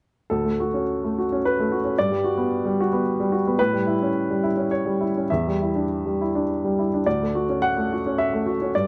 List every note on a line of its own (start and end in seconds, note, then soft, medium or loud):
0.30 1.92 D2 soft
0.30 1.42 A4 medium
0.45 0.67 A3 soft
0.60 0.82 F#4 soft
0.74 1.18 C#4 soft
1.04 1.24 A3 soft
1.19 1.38 F#4 soft
1.32 1.74 C#4 soft
1.45 1.98 B4 medium
1.60 1.79 A3 soft
1.72 1.92 F#4 soft
1.85 1.97 C#4 soft
1.98 3.56 G2 soft
1.98 3.59 D5 medium
2.11 2.32 G3 soft
2.24 2.45 F#4 soft
2.37 2.80 B3 soft
2.65 2.86 G3 soft
2.80 3.00 F#4 soft
2.93 3.35 B3 soft
3.20 3.40 G3 soft
3.32 3.53 F#4 soft
3.47 3.60 B3 soft
3.59 5.25 A2 soft
3.59 4.71 B4 medium
3.73 3.95 G3 soft
3.87 4.09 E4 soft
4.02 4.46 C#4 soft
4.31 4.52 G3 soft
4.43 4.65 E4 soft
4.57 5.02 C#4 soft
4.71 5.29 C#5 medium
4.86 5.08 G3 soft
5.00 5.23 E4 soft
5.17 5.30 C#4 soft
5.30 7.02 E2 soft
5.30 6.48 E5 soft
5.47 5.69 G3 soft
5.62 5.84 E4 soft
5.75 6.22 D4 soft
6.05 6.28 G3 soft
6.21 6.43 E4 soft
6.35 6.80 D4 soft
6.64 6.86 G3 soft
6.79 7.01 E4 soft
6.94 7.07 D4 soft
7.06 8.70 D2 soft
7.06 7.63 D5 medium
7.22 7.44 A3 soft
7.35 7.57 F#4 soft
7.49 7.93 C#4 soft
7.62 8.17 F#5 medium
7.77 7.99 A3 soft
7.93 8.13 F#4 soft
8.07 8.49 C#4 soft
8.18 8.73 E5 medium
8.33 8.55 A3 soft
8.46 8.68 F#4 soft
8.62 8.74 C#4 soft
8.75 8.87 G2 soft
8.75 8.87 D5 medium